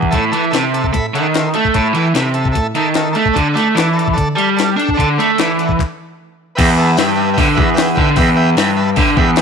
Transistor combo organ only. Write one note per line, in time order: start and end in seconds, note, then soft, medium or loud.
0.11 0.25 A4 loud
0.11 0.25 E5 medium
0.11 0.25 A5 loud
0.31 0.45 A4 medium
0.31 0.45 E5 medium
0.31 0.45 A5 medium
0.50 0.65 A4 medium
0.50 0.65 E5 medium
0.50 0.65 A5 loud
0.73 0.86 A4 medium
0.73 0.86 E5 medium
0.73 0.87 A5 medium
0.92 1.06 A4 loud
0.92 1.06 E5 medium
0.92 1.06 B5 loud
1.15 1.27 A4 medium
1.15 1.27 E5 medium
1.15 1.27 F#5 loud
1.37 1.48 A4 medium
1.37 1.49 E5 medium
1.37 1.49 C6 medium
1.55 1.68 A4 medium
1.55 1.68 E5 medium
1.55 1.68 A5 medium
1.75 1.88 A4 loud
1.75 1.88 E5 loud
1.75 1.88 A5 loud
1.95 2.08 A4 medium
1.95 2.08 E5 medium
1.95 2.08 G5 medium
2.17 2.29 A4 medium
2.17 2.30 E5 medium
2.17 2.29 B5 medium
2.34 2.48 A4 medium
2.34 2.48 E5 medium
2.34 2.48 A5 medium
2.52 2.67 A4 loud
2.52 2.67 E5 medium
2.52 2.68 A5 loud
2.75 2.89 A4 medium
2.75 2.89 E5 medium
2.75 2.89 A5 loud
2.95 3.09 A4 medium
2.95 3.09 E5 medium
2.95 3.09 A5 medium
3.13 3.28 A4 medium
3.13 3.28 E5 medium
3.13 3.28 A5 medium
3.33 3.48 A4 loud
3.33 3.48 D5 medium
3.33 3.48 A5 loud
3.54 3.68 A4 medium
3.54 3.68 D5 medium
3.54 3.69 A5 medium
3.75 3.89 A4 medium
3.75 3.89 D5 medium
3.75 3.90 A5 loud
3.93 4.08 A4 medium
3.93 4.08 D5 medium
3.93 4.08 A5 medium
4.13 4.28 A4 loud
4.13 4.29 D5 loud
4.13 4.29 A5 loud
4.35 4.49 A4 medium
4.35 4.50 D5 medium
4.35 4.49 A5 loud
4.56 4.70 A4 medium
4.56 4.70 D5 medium
4.56 4.70 A5 medium
4.76 4.90 A4 medium
4.76 4.90 D5 medium
4.76 4.90 G5 medium
4.94 5.09 A4 loud
4.94 5.09 D5 medium
4.94 5.10 A5 loud
5.19 5.31 A4 medium
5.19 5.31 D5 medium
5.19 5.32 B5 medium
5.40 5.52 A4 medium
5.40 5.52 D5 medium
5.40 5.52 B5 loud
5.60 5.72 A4 medium
5.60 5.72 D5 medium
5.60 5.73 F#5 medium
6.55 6.70 B4 loud
6.55 6.70 E5 loud
6.55 6.71 G5 loud
6.78 6.91 B4 loud
6.78 6.91 E5 loud
6.78 6.92 A5 loud
6.96 7.11 B4 medium
6.96 7.10 E5 medium
6.96 7.11 G5 loud
7.15 7.30 B4 medium
7.15 7.30 E5 medium
7.15 7.30 G5 medium
7.34 7.49 B4 medium
7.34 7.49 E5 medium
7.34 7.49 G5 loud
7.55 7.70 B4 loud
7.55 7.70 E5 medium
7.55 7.70 F#5 loud
7.74 7.89 B4 loud
7.74 7.89 E5 loud
7.74 7.90 G5 loud
7.95 8.10 B4 medium
7.95 8.10 E5 medium
7.95 8.10 G5 loud
8.16 8.30 B4 loud
8.16 8.30 E5 loud
8.16 8.30 G5 loud
8.36 8.50 B4 loud
8.36 8.50 E5 loud
8.36 8.50 G5 loud
8.57 8.71 B4 loud
8.57 8.71 E5 medium
8.57 8.72 G5 loud
8.77 8.90 B4 medium
8.77 8.90 E5 medium
8.77 8.91 A5 medium
8.97 9.11 B4 medium
8.97 9.11 E5 medium
8.97 9.11 G5 loud
9.18 9.31 B4 loud
9.18 9.31 E5 loud
9.18 9.31 G5 loud
9.37 9.42 B4 loud
9.37 9.42 E5 loud
9.37 9.42 G5 loud